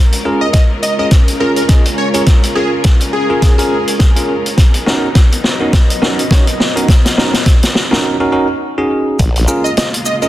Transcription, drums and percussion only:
0.12 closed hi-hat
0.53 kick, snare, closed hi-hat
0.83 closed hi-hat
1.11 kick, snare, closed hi-hat
1.28 closed hi-hat
1.56 closed hi-hat
1.69 kick, snare, closed hi-hat
1.85 closed hi-hat
2.14 closed hi-hat
2.26 kick, snare, closed hi-hat
2.43 closed hi-hat
2.84 kick, snare, closed hi-hat
3.00 closed hi-hat
3.42 kick, snare, closed hi-hat
3.59 closed hi-hat
3.88 closed hi-hat
3.99 kick, snare, closed hi-hat
4.16 closed hi-hat
4.46 closed hi-hat
4.58 kick, snare, closed hi-hat
4.74 closed hi-hat
4.87 snare
5.15 kick, snare, closed hi-hat
5.32 closed hi-hat
5.44 snare
5.73 kick, snare, closed hi-hat
5.90 closed hi-hat
6.02 snare
6.19 closed hi-hat
6.31 kick, snare, closed hi-hat
6.47 closed hi-hat
6.60 snare
6.77 closed hi-hat
6.88 kick, snare, closed hi-hat
7.05 snare, closed hi-hat
7.18 snare
7.34 snare, closed hi-hat
7.46 kick, snare, closed hi-hat
7.63 snare, closed hi-hat
7.75 snare
7.93 snare
9.19 kick, closed hi-hat, maracas
9.36 closed hi-hat
9.48 maracas
9.65 maracas
9.77 snare, closed hi-hat, maracas
9.94 closed hi-hat
10.05 maracas
10.22 maracas

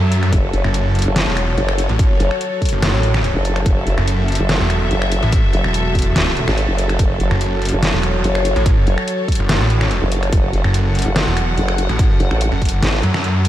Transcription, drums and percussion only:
0.12 closed hi-hat
0.23 finger snap, closed hi-hat
0.33 kick, closed hi-hat
0.53 closed hi-hat
0.64 finger snap
0.74 closed hi-hat
0.95 closed hi-hat
0.99 closed hi-hat
1.02 closed hi-hat
1.16 snare, closed hi-hat
1.37 finger snap, closed hi-hat
1.58 closed hi-hat
1.69 finger snap
1.78 closed hi-hat
1.89 closed hi-hat
1.99 kick, closed hi-hat
2.20 closed hi-hat
2.31 finger snap
2.41 closed hi-hat
2.62 kick, closed hi-hat
2.65 closed hi-hat
2.69 closed hi-hat
2.83 snare, closed hi-hat
3.03 closed hi-hat
3.14 finger snap, snare
3.24 closed hi-hat
3.45 closed hi-hat
3.56 finger snap, closed hi-hat
3.66 kick, closed hi-hat
3.87 closed hi-hat
3.98 finger snap
4.08 closed hi-hat
4.28 closed hi-hat
4.32 closed hi-hat
4.35 closed hi-hat
4.49 snare, closed hi-hat
4.70 finger snap, closed hi-hat
4.91 closed hi-hat
5.02 finger snap
5.12 closed hi-hat
5.23 closed hi-hat
5.32 kick, closed hi-hat
5.53 closed hi-hat
5.64 finger snap
5.74 closed hi-hat
5.95 kick, closed hi-hat
5.99 closed hi-hat
6.02 closed hi-hat
6.16 snare, closed hi-hat
6.37 closed hi-hat
6.48 finger snap, snare
6.58 closed hi-hat
6.78 closed hi-hat
6.89 finger snap, closed hi-hat
6.99 kick, closed hi-hat
7.20 closed hi-hat
7.31 finger snap
7.41 closed hi-hat
7.62 closed hi-hat
7.65 closed hi-hat
7.69 closed hi-hat
7.83 snare, closed hi-hat
8.03 finger snap, closed hi-hat
8.24 closed hi-hat
8.35 finger snap
8.45 closed hi-hat
8.56 closed hi-hat
8.66 kick, closed hi-hat
8.87 closed hi-hat
8.98 finger snap
9.08 closed hi-hat
9.28 kick, closed hi-hat
9.32 closed hi-hat
9.35 closed hi-hat
9.49 snare, closed hi-hat
9.70 closed hi-hat
9.81 finger snap, snare
9.91 closed hi-hat
10.12 closed hi-hat
10.23 finger snap, closed hi-hat
10.33 kick, closed hi-hat
10.53 closed hi-hat
10.64 finger snap
10.74 closed hi-hat
10.95 closed hi-hat
10.99 closed hi-hat
11.02 closed hi-hat
11.16 snare, closed hi-hat
11.37 finger snap, closed hi-hat
11.58 closed hi-hat
11.68 finger snap
11.78 closed hi-hat
11.89 closed hi-hat
11.99 kick, closed hi-hat
12.20 closed hi-hat
12.31 finger snap
12.41 closed hi-hat
12.62 kick, closed hi-hat
12.65 closed hi-hat
12.69 closed hi-hat
12.83 snare, closed hi-hat
13.03 closed hi-hat
13.14 finger snap, snare
13.24 closed hi-hat
13.45 closed hi-hat

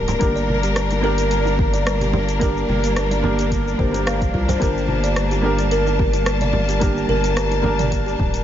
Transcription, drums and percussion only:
0.08 closed hi-hat, low conga, shaker
0.21 kick, closed hi-hat, shaker
0.37 shaker
0.49 high bongo, high conga
0.63 closed hi-hat, shaker
0.76 cross-stick, closed hi-hat, shaker
0.91 closed hi-hat, high bongo, shaker
1.18 closed hi-hat, shaker
1.31 closed hi-hat, shaker
1.45 high bongo, shaker
1.59 kick
1.73 closed hi-hat, high bongo, shaker
1.87 cross-stick, closed hi-hat, shaker
2.01 closed hi-hat, high conga, shaker
2.13 low conga
2.29 closed hi-hat, shaker
2.41 kick, closed hi-hat, shaker
2.57 shaker
2.69 high bongo, high conga
2.84 closed hi-hat, shaker
2.96 cross-stick, closed hi-hat, shaker
3.11 closed hi-hat, high bongo, shaker
3.24 low conga
3.39 closed hi-hat, shaker
3.52 kick, closed hi-hat, shaker
3.68 shaker
3.79 kick, high conga
3.94 closed hi-hat, shaker
4.07 cross-stick, closed hi-hat, shaker
4.21 kick, closed hi-hat, shaker
4.34 kick
4.49 closed hi-hat, low conga, shaker
4.62 kick, closed hi-hat, shaker
4.78 shaker
4.88 high bongo, high conga
5.04 closed hi-hat, shaker
5.16 cross-stick, closed hi-hat, shaker
5.31 closed hi-hat, high bongo, shaker
5.59 closed hi-hat, shaker
5.71 closed hi-hat, shaker
5.87 high bongo, shaker
5.99 kick
6.13 closed hi-hat, high bongo, shaker
6.26 cross-stick, closed hi-hat, shaker
6.41 closed hi-hat, high conga, shaker
6.53 low conga
6.69 closed hi-hat, shaker
6.82 kick, closed hi-hat, shaker
6.97 shaker
7.08 high bongo, high conga
7.24 closed hi-hat, shaker
7.37 cross-stick, closed hi-hat, shaker
7.51 closed hi-hat, high bongo, shaker
7.64 low conga
7.79 closed hi-hat, mid tom, shaker
7.92 kick, closed hi-hat, shaker
8.08 shaker
8.19 kick, high conga
8.34 closed hi-hat, shaker

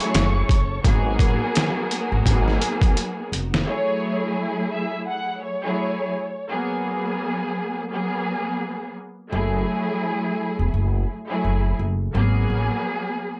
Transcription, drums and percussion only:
0.00 closed hi-hat
0.14 snare, closed hi-hat
0.49 kick, closed hi-hat
0.84 kick, closed hi-hat
1.19 kick, closed hi-hat
1.55 snare, closed hi-hat
1.91 closed hi-hat
2.26 kick, closed hi-hat
2.48 snare
2.62 closed hi-hat
2.82 kick, closed hi-hat
2.97 closed hi-hat
3.33 closed hi-hat
3.54 snare

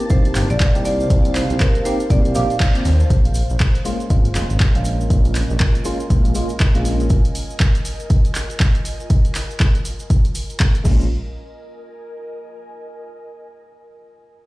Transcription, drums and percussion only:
0.00 closed hi-hat
0.10 kick, closed hi-hat, cabasa
0.25 closed hi-hat, cabasa
0.35 clap, open hi-hat, cabasa
0.50 closed hi-hat, cabasa
0.60 kick, clap, closed hi-hat, cabasa
0.75 closed hi-hat, cabasa
0.85 open hi-hat, cabasa
1.00 cabasa
1.10 kick, closed hi-hat, cabasa
1.25 closed hi-hat, cabasa
1.35 clap, open hi-hat, cabasa
1.50 closed hi-hat, cabasa
1.60 kick, clap, closed hi-hat, cabasa
1.75 closed hi-hat, cabasa
1.85 open hi-hat, cabasa
2.00 closed hi-hat, cabasa
2.10 kick, closed hi-hat, cabasa
2.25 closed hi-hat, cabasa
2.35 open hi-hat, cabasa
2.50 closed hi-hat, cabasa
2.60 kick, clap, closed hi-hat, cabasa
2.75 closed hi-hat, cabasa
2.85 open hi-hat, cabasa
3.00 closed hi-hat, cabasa
3.10 kick, closed hi-hat, cabasa
3.25 closed hi-hat, cabasa
3.34 open hi-hat, cabasa
3.50 cabasa
3.60 kick, clap, closed hi-hat, cabasa
3.75 closed hi-hat, cabasa
3.85 open hi-hat, cabasa
4.00 closed hi-hat, cabasa
4.10 kick, closed hi-hat, cabasa
4.25 closed hi-hat, cabasa
4.35 clap, open hi-hat, cabasa
4.50 closed hi-hat, cabasa
4.60 kick, clap, closed hi-hat, cabasa
4.75 closed hi-hat, cabasa
4.85 open hi-hat, cabasa
5.01 cabasa
5.10 kick, closed hi-hat, cabasa
5.25 closed hi-hat, cabasa
5.35 clap, open hi-hat, cabasa
5.50 cabasa
5.60 kick, clap, closed hi-hat, cabasa
5.75 closed hi-hat, cabasa
5.85 open hi-hat, cabasa
6.00 closed hi-hat, cabasa
6.10 kick, closed hi-hat, cabasa
6.25 closed hi-hat, cabasa
6.35 open hi-hat, cabasa
6.49 closed hi-hat, cabasa
6.60 kick, clap, closed hi-hat, cabasa
6.74 closed hi-hat, cabasa
6.85 open hi-hat, cabasa
7.00 closed hi-hat, cabasa
7.10 kick, closed hi-hat, cabasa
7.25 closed hi-hat, cabasa
7.35 open hi-hat, cabasa
7.50 cabasa
7.60 kick, clap, closed hi-hat, cabasa
7.75 closed hi-hat, cabasa
7.85 open hi-hat, cabasa
8.00 closed hi-hat, cabasa
8.10 kick, closed hi-hat, cabasa
8.25 closed hi-hat, cabasa
8.35 clap, open hi-hat, cabasa
8.50 closed hi-hat, cabasa
8.60 kick, clap, closed hi-hat, cabasa
8.75 closed hi-hat, cabasa
8.85 open hi-hat, cabasa
9.00 cabasa
9.10 kick, closed hi-hat, cabasa
9.25 closed hi-hat, cabasa
9.35 clap, open hi-hat, cabasa
9.51 cabasa
9.60 kick, clap, closed hi-hat, cabasa
9.75 closed hi-hat, cabasa
9.85 open hi-hat, cabasa
9.99 closed hi-hat, cabasa
10.10 kick, closed hi-hat, cabasa
10.25 closed hi-hat, cabasa
10.35 open hi-hat, cabasa
10.50 closed hi-hat, cabasa
10.60 kick, clap, closed hi-hat, cabasa
10.75 closed hi-hat, cabasa
10.85 kick, crash, cabasa
11.01 cabasa

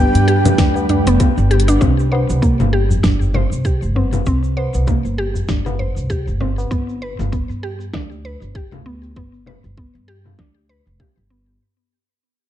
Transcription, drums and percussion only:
0.15 closed hi-hat, cabasa
0.28 closed hi-hat
0.45 closed hi-hat, tabla ge, low conga, cabasa
0.58 kick, snare, closed hi-hat, cabasa
0.75 tabla na, cabasa
0.89 closed hi-hat, tabla na, tabla ge
1.07 closed hi-hat, cabasa
1.20 kick, closed hi-hat, low conga, cabasa
1.38 cabasa
1.51 closed hi-hat
1.60 closed hi-hat
1.68 closed hi-hat, tabla na, cabasa
1.81 kick, low conga, cabasa
1.99 cabasa
2.12 tabla na, tabla tin
2.30 tabla na, cabasa
2.43 kick, cabasa
2.60 low conga, cabasa
2.91 tabla ge, cabasa
3.04 kick, snare, tabla tin, cabasa
3.21 tabla ge, cabasa
3.34 low conga
3.52 cabasa
3.65 kick, cabasa
3.82 cabasa
3.95 tabla na, tabla ge
4.13 tabla tin, low conga, cabasa
4.26 kick, cabasa
4.44 cabasa
4.57 tabla na, tabla tin
4.74 tabla na, cabasa
4.87 kick, low conga, cabasa
5.05 cabasa
5.35 tabla ge, cabasa
5.49 kick, snare, cabasa
5.66 tabla na, low conga, cabasa
5.80 tabla ge
5.97 cabasa
6.10 kick, cabasa
6.28 cabasa
6.40 low conga
6.58 tabla na, cabasa
6.71 kick, cabasa
6.89 cabasa
7.20 low conga, cabasa
7.33 kick, cabasa
7.50 cabasa
7.80 cabasa
7.94 kick, snare, low conga, cabasa
8.11 cabasa
8.42 cabasa
8.55 kick, cabasa
8.72 low conga, cabasa
9.03 cabasa
9.16 kick, cabasa
9.33 cabasa
9.46 low conga
9.64 cabasa
9.78 kick, cabasa
9.95 cabasa
10.26 low conga, cabasa
10.39 kick, snare
10.87 cabasa
11.00 kick, low conga, cabasa

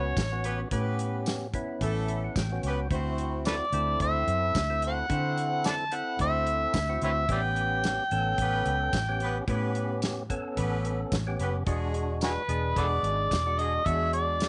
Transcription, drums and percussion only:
0.17 kick, snare, closed hi-hat, tambourine
0.44 closed hi-hat
0.71 kick, closed hi-hat
0.99 closed hi-hat
1.26 snare, closed hi-hat, tambourine
1.54 kick, closed hi-hat
1.81 kick, closed hi-hat
2.08 closed hi-hat
2.36 kick, snare, closed hi-hat, tambourine
2.63 closed hi-hat
2.91 kick, closed hi-hat
3.18 closed hi-hat
3.45 snare, closed hi-hat, tambourine
3.73 closed hi-hat
4.00 kick, closed hi-hat
4.28 closed hi-hat
4.55 kick, snare, closed hi-hat, tambourine
4.82 closed hi-hat
5.10 kick, closed hi-hat
5.38 closed hi-hat
5.64 snare, closed hi-hat, tambourine
5.92 closed hi-hat
6.19 kick, closed hi-hat
6.46 closed hi-hat
6.74 kick, snare, closed hi-hat, tambourine
7.02 closed hi-hat
7.29 kick, closed hi-hat
7.56 closed hi-hat
7.84 snare, closed hi-hat, tambourine
8.11 closed hi-hat
8.38 kick, closed hi-hat
8.66 closed hi-hat
8.93 kick, snare, closed hi-hat, tambourine
9.20 closed hi-hat
9.48 kick, closed hi-hat
9.75 closed hi-hat
10.02 snare, closed hi-hat, tambourine
10.30 kick, closed hi-hat
10.57 kick, closed hi-hat
10.85 closed hi-hat
11.12 kick, snare, closed hi-hat, tambourine
11.39 closed hi-hat
11.67 kick, closed hi-hat
11.94 closed hi-hat
12.21 snare, closed hi-hat, tambourine
12.49 closed hi-hat
12.76 kick, closed hi-hat
13.04 closed hi-hat
13.31 kick, snare, closed hi-hat, tambourine
13.59 closed hi-hat
13.86 kick, closed hi-hat
14.13 closed hi-hat
14.40 snare, closed hi-hat, tambourine

